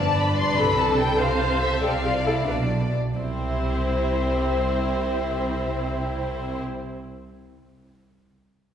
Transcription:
0.00 0.57 G1 soft
0.00 0.57 G2 soft
0.00 1.19 D4 soft
0.00 1.19 B4 soft
0.00 0.56 D5 soft
0.00 0.17 A5 medium
0.17 0.37 B5 medium
0.37 0.57 C6 medium
0.56 1.81 C2 soft
0.56 1.82 C3 soft
0.56 1.20 A4 medium
0.56 0.77 B5 medium
0.78 0.99 A5 medium
0.98 1.19 G5 medium
1.18 1.83 A4 soft
1.18 1.83 C5 soft
1.18 1.61 F5 medium
1.61 1.83 E5 medium
1.82 2.47 C2 soft
1.82 2.47 C3 soft
1.82 1.91 G4 soft
1.82 1.90 A4 soft
1.82 2.47 D5 soft
1.82 2.48 F5 medium
2.04 2.26 F4 soft
2.04 2.12 G4 soft
2.26 2.48 E4 soft
2.26 2.34 A4 soft
2.47 2.94 B1 soft
2.47 2.94 B2 soft
2.47 2.95 D4 soft
2.47 2.55 B4 soft
2.47 2.94 D5 soft
3.15 6.61 C2 soft
3.15 6.61 C4 soft
3.15 6.61 E4 soft
3.15 6.62 G4 soft
3.15 6.61 C5 soft
3.15 6.62 C5 soft

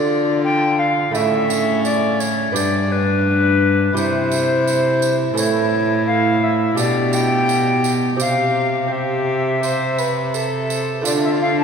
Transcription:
0.00 1.11 D3 medium
0.00 1.11 D3 soft
0.00 1.09 A3 soft
0.00 1.09 D4 soft
0.00 1.10 F4 soft
0.00 1.16 F4 medium
0.00 0.40 D5 medium
0.44 0.80 G5 loud
0.79 1.14 F5 medium
1.11 2.53 A2 medium
1.11 2.52 A2 medium
1.11 2.51 C#3 soft
1.11 2.50 A3 soft
1.11 2.55 C#4 medium
1.11 2.51 E4 soft
1.11 1.83 E5 medium
1.11 tambourine soft
1.50 tambourine soft
1.84 2.21 D5 medium
1.84 tambourine soft
2.20 2.55 C#5 medium
2.20 tambourine soft
2.52 3.94 G2 medium
2.52 3.91 B3 soft
2.52 3.91 D4 soft
2.52 3.94 D4 medium
2.52 3.92 G4 medium
2.52 2.93 D5 medium
2.52 tambourine medium
2.56 3.93 G2 soft
2.92 3.96 B4 medium
3.93 5.33 C3 medium
3.93 5.31 E4 soft
3.93 5.34 E4 medium
3.93 5.32 G4 medium
3.93 5.15 C5 medium
3.93 tambourine soft
3.97 5.34 C3 medium
4.32 tambourine soft
4.67 tambourine soft
5.02 tambourine medium
5.34 6.74 A2 soft
5.34 6.72 E3 soft
5.34 6.78 E4 medium
5.34 6.73 A4 soft
5.34 6.06 C#5 medium
5.34 tambourine medium
5.38 6.75 A2 medium
6.07 6.45 F5 loud
6.43 6.78 E5 medium
6.75 8.17 B2 medium
6.75 8.16 B2 soft
6.75 8.15 D4 soft
6.75 8.15 G4 soft
6.75 8.18 G4 medium
6.75 7.15 D5 medium
6.75 tambourine soft
7.13 7.92 G5 loud
7.13 tambourine soft
7.49 tambourine soft
7.84 tambourine soft
8.16 10.81 C3 soft
8.16 10.82 C3 medium
8.16 8.86 C4 soft
8.16 8.87 G4 soft
8.16 8.90 G4 medium
8.16 tambourine medium
8.21 8.93 F5 medium
8.87 10.99 C4 soft
8.87 11.00 G4 soft
8.87 9.59 G4 medium
8.92 10.70 E5 medium
9.63 10.00 C5 medium
9.63 tambourine soft
9.98 10.36 B4 medium
9.98 tambourine soft
10.34 11.04 A4 medium
10.34 tambourine soft
10.70 tambourine medium
11.01 11.64 D3 medium
11.01 11.64 A3 medium
11.01 11.64 D4 medium
11.01 11.64 F4 soft
11.01 11.64 F4 medium
11.05 11.12 D5 medium
11.05 tambourine medium
11.24 11.30 E5 medium
11.41 11.58 F5 medium
11.60 11.64 A5 medium

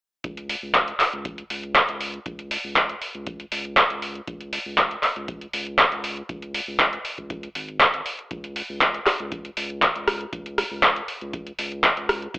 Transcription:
0.24 0.55 C#2 loud
0.24 kick loud
0.24 closed hi-hat medium
0.37 closed hi-hat soft
0.49 open hi-hat loud
0.63 0.93 C#2 medium
0.75 kick loud
0.75 clap loud
0.75 closed hi-hat medium
0.88 closed hi-hat soft
1.00 clap medium
1.00 open hi-hat medium
1.13 1.44 C#2 loud
1.13 closed hi-hat soft
1.25 kick loud
1.25 closed hi-hat medium
1.38 closed hi-hat soft
1.50 1.81 C#2 medium
1.50 open hi-hat loud
1.63 closed hi-hat soft
1.76 kick loud
1.76 clap loud
1.76 closed hi-hat medium
1.89 2.19 C#2 medium
1.89 closed hi-hat medium
2.01 open hi-hat medium
2.14 closed hi-hat soft
2.26 2.57 C#2 loud
2.26 kick loud
2.26 closed hi-hat medium
2.39 closed hi-hat soft
2.51 open hi-hat loud
2.64 2.95 C#2 medium
2.76 kick loud
2.76 clap loud
2.76 closed hi-hat medium
2.89 closed hi-hat soft
3.02 open hi-hat medium
3.15 3.45 C#2 loud
3.15 closed hi-hat soft
3.27 kick loud
3.27 closed hi-hat medium
3.40 closed hi-hat soft
3.52 3.83 C#2 loud
3.52 open hi-hat loud
3.65 closed hi-hat soft
3.77 kick loud
3.77 clap loud
3.77 closed hi-hat medium
3.90 4.21 C#2 loud
3.90 closed hi-hat soft
4.02 open hi-hat medium
4.15 closed hi-hat soft
4.27 4.59 C#2 medium
4.27 kick loud
4.27 closed hi-hat medium
4.41 closed hi-hat soft
4.53 open hi-hat loud
4.66 4.96 C#2 medium
4.78 kick loud
4.78 clap loud
4.78 closed hi-hat medium
4.91 closed hi-hat soft
5.03 clap medium
5.03 open hi-hat medium
5.16 5.47 C#2 loud
5.16 closed hi-hat soft
5.28 kick loud
5.28 closed hi-hat medium
5.41 closed hi-hat soft
5.53 5.85 C#2 loud
5.53 open hi-hat loud
5.67 closed hi-hat soft
5.79 kick loud
5.79 clap loud
5.79 closed hi-hat medium
5.92 6.22 C#2 loud
5.92 closed hi-hat soft
6.04 open hi-hat medium
6.17 closed hi-hat soft
6.29 6.60 C#2 loud
6.29 kick loud
6.29 closed hi-hat medium
6.42 closed hi-hat soft
6.54 open hi-hat loud
6.68 6.98 C#2 medium
6.80 kick loud
6.80 clap loud
6.80 closed hi-hat medium
6.93 closed hi-hat soft
7.05 open hi-hat medium
7.18 7.49 C#2 medium
7.18 kick medium
7.18 closed hi-hat soft
7.30 kick loud
7.30 closed hi-hat medium
7.43 closed hi-hat soft
7.55 7.86 G#1 medium
7.55 open hi-hat loud
7.68 closed hi-hat soft
7.80 kick loud
7.80 clap loud
7.80 closed hi-hat medium
7.94 8.02 G#1 medium
7.94 closed hi-hat soft
8.06 open hi-hat medium
8.19 closed hi-hat soft
8.31 8.62 C#2 loud
8.31 kick loud
8.31 closed hi-hat medium
8.44 closed hi-hat soft
8.56 open hi-hat loud
8.69 9.00 C#2 medium
8.81 kick loud
8.81 clap loud
8.81 closed hi-hat medium
8.94 closed hi-hat soft
9.06 cross-stick medium
9.06 clap medium
9.06 open hi-hat medium
9.20 9.50 C#2 loud
9.20 closed hi-hat soft
9.32 kick loud
9.32 closed hi-hat medium
9.45 closed hi-hat soft
9.57 9.88 C#2 medium
9.57 open hi-hat loud
9.70 closed hi-hat soft
9.82 kick loud
9.82 clap loud
9.82 closed hi-hat medium
9.95 10.26 C#2 medium
9.95 closed hi-hat soft
10.08 cross-stick medium
10.08 open hi-hat medium
10.21 closed hi-hat soft
10.33 10.64 C#2 loud
10.33 kick loud
10.33 closed hi-hat medium
10.46 closed hi-hat soft
10.58 cross-stick medium
10.58 open hi-hat medium
10.71 11.02 C#2 medium
10.83 kick loud
10.83 clap loud
10.83 closed hi-hat medium
10.96 closed hi-hat soft
11.08 open hi-hat medium
11.21 11.52 C#2 medium
11.21 closed hi-hat soft
11.33 kick loud
11.33 closed hi-hat medium
11.47 closed hi-hat soft
11.59 11.90 C#2 medium
11.59 open hi-hat loud
11.72 closed hi-hat soft
11.84 kick loud
11.84 clap loud
11.84 closed hi-hat medium
11.97 12.28 C#2 medium
11.97 closed hi-hat soft
12.09 cross-stick medium
12.09 open hi-hat medium
12.22 closed hi-hat soft
12.34 12.39 C#2 loud
12.34 kick loud
12.34 closed hi-hat medium

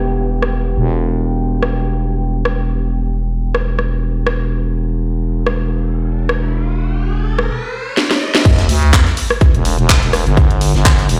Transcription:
0.00 0.75 E1 medium
0.00 7.49 B3 medium
0.00 7.49 G4 medium
0.00 7.49 E5 medium
0.00 7.49 G5 medium
0.42 cross-stick medium
0.77 7.49 E1 medium
1.62 cross-stick medium
2.45 cross-stick medium
3.55 cross-stick medium
3.79 cross-stick medium
4.27 cross-stick medium
4.61 riser medium
5.47 cross-stick medium
6.29 cross-stick medium
7.39 cross-stick medium
7.97 snare medium
8.11 snare medium
8.35 snare medium
8.45 8.67 E1 loud
8.45 kick loud
8.45 closed hi-hat medium
8.45 crash loud
8.45 sub drop medium
8.59 snare soft
8.59 closed hi-hat medium
8.69 8.91 D2 medium
8.69 open hi-hat loud
8.69 open hi-hat medium
8.83 closed hi-hat soft
8.93 9.04 E2 loud
8.93 kick loud
8.93 snare loud
8.93 clap loud
8.93 closed hi-hat medium
9.06 snare medium
9.06 closed hi-hat medium
9.17 closed hi-hat medium
9.17 open hi-hat loud
9.30 cross-stick medium
9.30 closed hi-hat soft
9.41 kick loud
9.41 closed hi-hat medium
9.49 11.20 E5 medium
9.54 9.76 E1 loud
9.54 closed hi-hat medium
9.65 closed hi-hat medium
9.65 open hi-hat loud
9.78 10.00 E1 loud
9.78 closed hi-hat soft
9.89 kick loud
9.89 snare loud
9.89 clap loud
9.89 closed hi-hat medium
10.02 10.24 E1 medium
10.02 closed hi-hat medium
10.13 cross-stick medium
10.13 closed hi-hat medium
10.13 open hi-hat medium
10.27 10.72 G1 loud
10.27 closed hi-hat soft
10.37 kick loud
10.37 closed hi-hat medium
10.51 closed hi-hat medium
10.61 closed hi-hat medium
10.61 open hi-hat loud
10.75 11.08 G1 loud
10.75 snare medium
10.75 closed hi-hat soft
10.85 kick loud
10.85 snare loud
10.85 clap loud
10.85 closed hi-hat medium
10.99 snare soft
10.99 closed hi-hat medium
11.09 11.20 E1 loud
11.09 closed hi-hat medium
11.09 open hi-hat loud

